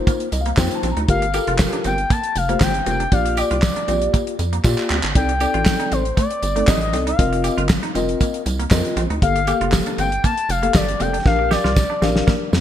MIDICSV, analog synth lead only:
0, 0, Header, 1, 2, 480
1, 0, Start_track
1, 0, Tempo, 508475
1, 1026, Time_signature, 4, 2, 24, 8
1, 11899, End_track
2, 0, Start_track
2, 0, Title_t, "Analog synth lead"
2, 0, Program_c, 0, 81
2, 1033, Note_on_c, 0, 77, 127
2, 1476, Note_off_c, 0, 77, 0
2, 1758, Note_on_c, 0, 79, 109
2, 1996, Note_on_c, 0, 81, 106
2, 2010, Note_off_c, 0, 79, 0
2, 2235, Note_on_c, 0, 77, 93
2, 2249, Note_off_c, 0, 81, 0
2, 2470, Note_off_c, 0, 77, 0
2, 2478, Note_on_c, 0, 79, 102
2, 2696, Note_off_c, 0, 79, 0
2, 2716, Note_on_c, 0, 79, 111
2, 2958, Note_on_c, 0, 77, 106
2, 2972, Note_off_c, 0, 79, 0
2, 3194, Note_on_c, 0, 74, 97
2, 3208, Note_off_c, 0, 77, 0
2, 4150, Note_off_c, 0, 74, 0
2, 4872, Note_on_c, 0, 79, 127
2, 5593, Note_on_c, 0, 72, 100
2, 5607, Note_off_c, 0, 79, 0
2, 5829, Note_off_c, 0, 72, 0
2, 5834, Note_on_c, 0, 74, 96
2, 6312, Note_on_c, 0, 75, 100
2, 6326, Note_off_c, 0, 74, 0
2, 6433, Note_off_c, 0, 75, 0
2, 6439, Note_on_c, 0, 75, 89
2, 6659, Note_off_c, 0, 75, 0
2, 6684, Note_on_c, 0, 77, 83
2, 7125, Note_off_c, 0, 77, 0
2, 8712, Note_on_c, 0, 77, 111
2, 9155, Note_off_c, 0, 77, 0
2, 9433, Note_on_c, 0, 79, 110
2, 9653, Note_off_c, 0, 79, 0
2, 9673, Note_on_c, 0, 81, 113
2, 9912, Note_on_c, 0, 77, 107
2, 9926, Note_off_c, 0, 81, 0
2, 10149, Note_off_c, 0, 77, 0
2, 10154, Note_on_c, 0, 74, 104
2, 10392, Note_on_c, 0, 79, 95
2, 10406, Note_off_c, 0, 74, 0
2, 10627, Note_off_c, 0, 79, 0
2, 10633, Note_on_c, 0, 77, 108
2, 10853, Note_off_c, 0, 77, 0
2, 10874, Note_on_c, 0, 74, 99
2, 11792, Note_off_c, 0, 74, 0
2, 11899, End_track
0, 0, End_of_file